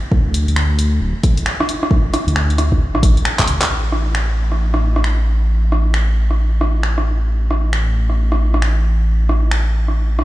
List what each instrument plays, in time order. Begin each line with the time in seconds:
0.12 detuned saw bass D2, kick
0.34 closed hi-hat
0.48 detuned saw bass D2, closed hi-hat
0.56 finger snap
0.79 closed hi-hat
1.01 detuned saw bass D1
1.23 kick, closed hi-hat
1.37 closed hi-hat
1.46 finger snap
1.60 cross-stick
1.69 closed hi-hat
1.83 cross-stick
1.91 kick
2.14 cross-stick, closed hi-hat
2.27 detuned saw bass D2, closed hi-hat
2.36 finger snap
2.50 closed hi-hat
2.58 cross-stick, closed hi-hat
2.72 kick
2.94 detuned saw bass A1, cross-stick
3.03 detuned saw bass A1, kick, closed hi-hat
3.17 closed hi-hat
3.25 finger snap
3.39 detuned saw bass A1, kick, clap
3.47 detuned saw bass D2, closed hi-hat
3.62 clap
3.69 detuned saw bass A1
3.92 cross-stick
4.15 finger snap
4.52 cross-stick
4.74 cross-stick
4.96 cross-stick
5.04 finger snap
5.72 cross-stick
5.94 finger snap
6.31 cross-stick
6.61 cross-stick
6.83 finger snap
6.98 cross-stick
7.51 cross-stick
7.73 finger snap
8.10 cross-stick
8.32 cross-stick
8.54 cross-stick
8.62 finger snap
9.29 cross-stick
9.51 finger snap
9.88 cross-stick
10.19 cross-stick